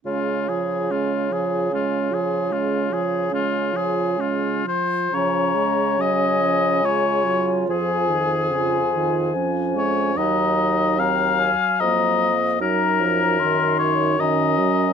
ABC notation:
X:1
M:3/4
L:1/8
Q:1/4=73
K:Db
V:1 name="Flute"
z6 | z6 | b2 a4 | a6 |
b2 b a b z | b2 c'2 b2 |]
V:2 name="Oboe"
F A F A F A | F A F A F c | d2 e2 d2 | A4 z d |
e2 f2 e2 | B3 d e2 |]
V:3 name="Clarinet"
D F D F D F | D F D F D F | D2 D2 F2- | F2 F2 D2 |
E2 C z B,2 | E2 E2 D2 |]
V:4 name="French horn" clef=bass
A, F, A, F, A, F, | A, F, A, F, A, F, | F, A, G, F, A, G, | F, E, D, E, F, A, |
G,4- G, z | G, F, E,2 E, G, |]
V:5 name="Bassoon" clef=bass
D,6- | D,4- D, z | D,6 | F,,6 |
E,,3 z F,,2 | G,,6 |]